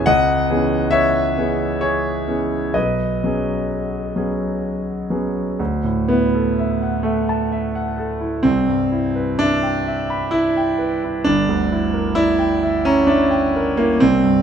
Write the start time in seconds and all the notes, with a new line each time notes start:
0.06 C#2 D#5 F#5
0.50 E3 B3 C#4 G#4
0.91 C#5 E5
1.37 E3 B3 C#4 G#4
1.81 G#4 C#5
2.28 E3 B3 C#4 G#4
2.74 B1 B4 D#5
3.24 F#3 B3 C#4 G#4
4.16 F#3 B3 C#4 G#4
5.10 F#3 B3 C#4 G#4
5.60 D2
5.84 A2
6.08 B3 E4
6.34 A4
6.59 E5
6.82 F#5
7.03 A3 E5
7.29 A5
7.52 E5
7.75 F#5
7.98 A4
8.21 E4
8.43 C2 C4
8.68 G2
8.92 E4
9.15 B4
9.39 D4 E5
9.63 G5
9.86 E5
10.10 B5
10.31 E4 E5
10.57 G5
10.78 B4
11.04 E4
11.24 G1 D4
11.49 D2
11.72 E4
11.94 A#4
12.15 E4 D5
12.39 G5
12.63 E5
12.85 C#4 A#5
13.07 D4 E5
13.31 G5
13.56 A#4
13.77 A#3 E4
14.00 C2 C4
14.24 G2